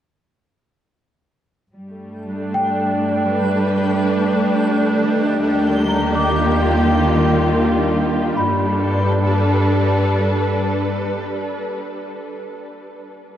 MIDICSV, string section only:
0, 0, Header, 1, 2, 480
1, 0, Start_track
1, 0, Tempo, 833333
1, 992, Time_signature, 4, 2, 24, 8
1, 7702, End_track
2, 0, Start_track
2, 0, Title_t, "String section"
2, 0, Program_c, 0, 48
2, 1004, Note_on_c, 0, 55, 53
2, 1092, Note_on_c, 0, 57, 55
2, 1330, Note_on_c, 0, 62, 72
2, 1820, Note_on_c, 0, 71, 64
2, 2901, Note_on_c, 0, 51, 71
2, 2912, Note_off_c, 0, 71, 0
2, 2918, Note_off_c, 0, 55, 0
2, 3080, Note_on_c, 0, 67, 68
2, 3144, Note_on_c, 0, 58, 71
2, 3596, Note_off_c, 0, 62, 0
2, 3627, Note_off_c, 0, 57, 0
2, 3651, Note_on_c, 0, 65, 60
2, 4826, Note_off_c, 0, 67, 0
2, 4827, Note_off_c, 0, 51, 0
2, 4827, Note_off_c, 0, 58, 0
2, 4827, Note_on_c, 0, 55, 61
2, 4830, Note_off_c, 0, 65, 0
2, 4886, Note_on_c, 0, 62, 58
2, 4972, Note_on_c, 0, 69, 61
2, 5055, Note_on_c, 0, 71, 59
2, 6589, Note_off_c, 0, 55, 0
2, 6648, Note_off_c, 0, 62, 0
2, 6734, Note_off_c, 0, 69, 0
2, 6817, Note_off_c, 0, 71, 0
2, 7702, End_track
0, 0, End_of_file